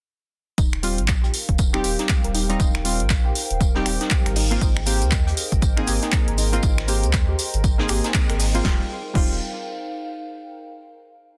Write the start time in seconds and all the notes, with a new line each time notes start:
0.58 D#1 D#4 A#4 C5 F5 G5, kick, closed hi-hat, tambourine
0.73 finger snap
0.83 G3 C4 F4, open hi-hat, tambourine
0.95 A#1 F5, closed hi-hat
1.01 A#4
1.08 kick, snare, clap, closed hi-hat, tambourine
1.24 G4, closed hi-hat
1.34 open hi-hat, tambourine
1.49 D#1, kick, closed hi-hat
1.58 kick, closed hi-hat, tambourine
1.73 G3 C4 D#4 G4 G5, finger snap
1.84 D#1 G4, open hi-hat, tambourine
1.99 D#4, snare, closed hi-hat
2.09 kick, snare, clap, closed hi-hat, tambourine
2.24 D#1 A#4, closed hi-hat
2.35 D#4, open hi-hat, tambourine
2.49 G3 C4 D#4, closed hi-hat
2.60 D#1 D#4, kick, closed hi-hat, tambourine
2.75 finger snap, snare
2.85 G3 C4 F4, open hi-hat, tambourine
3.00 A#1, closed hi-hat
3.10 kick, snare, clap, closed hi-hat, tambourine
3.25 G4
3.35 open hi-hat, tambourine
3.51 D#1, closed hi-hat
3.61 kick, closed hi-hat, tambourine
3.75 G3 C4 D#4 G4, snare
3.86 D#1 G4, finger snap, open hi-hat, tambourine
4.01 D#4, snare, closed hi-hat
4.10 kick, snare, clap, closed hi-hat, tambourine
4.26 G#1 A#4, finger snap, closed hi-hat
4.36 D#4 G#4 D#5, open hi-hat
4.51 A#3 C4 F4 D#5, closed hi-hat
4.61 G#1 D#4, kick, closed hi-hat, tambourine, maracas
4.77 finger snap
4.86 A#3 C4 G4, open hi-hat, tambourine, maracas
5.02 D#2, closed hi-hat, maracas
5.11 kick, snare, clap, closed hi-hat, tambourine, maracas
5.27 G4 C6, closed hi-hat
5.33 A#5
5.37 open hi-hat, tambourine, maracas
5.52 G#1, kick, closed hi-hat, maracas
5.62 kick, closed hi-hat, tambourine, maracas
5.76 A#3 C4 D#4 G#4, finger snap
5.87 G#1 G4, open hi-hat, tambourine, maracas
6.03 D#4, snare, closed hi-hat, maracas
6.12 kick, snare, clap, closed hi-hat, tambourine, maracas
6.28 G#1 A#4, closed hi-hat
6.38 D#4, open hi-hat, tambourine, maracas
6.53 A#3 C4 F4, closed hi-hat, maracas
6.63 G#1 D#4, kick, closed hi-hat, tambourine, maracas
6.78 finger snap, snare
6.88 A#3 C4 G4, open hi-hat, tambourine, maracas
7.03 D#2, closed hi-hat, maracas
7.13 kick, snare, clap, closed hi-hat, tambourine, maracas
7.29 G4
7.39 open hi-hat, tambourine, maracas
7.54 G#1, closed hi-hat, maracas
7.64 kick, closed hi-hat, tambourine, maracas
7.78 A#3 C4 D#4 G#4, snare
7.89 G#1 G4, finger snap, open hi-hat, tambourine, maracas
8.04 D#4, snare, closed hi-hat, maracas
8.14 kick, snare, clap, closed hi-hat, tambourine, maracas
8.29 G#1 A#4, finger snap, closed hi-hat
8.40 D#4, open hi-hat, maracas
8.54 A#3 C4 F4, closed hi-hat, maracas
8.63 D#1 G3 C4 D#4 F4, kick, snare
8.74 A#4
8.82 F5
8.88 G5
9.14 D#1 G3 C4 D#4 F4, kick, crash